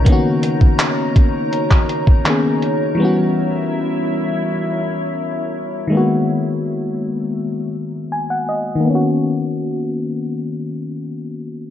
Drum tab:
HH |x-x-x-x-x-x-x-x-|----------------|----------------|----------------|
CP |----x----x--x---|----------------|----------------|----------------|
BD |o--o--o--o-o----|----------------|----------------|----------------|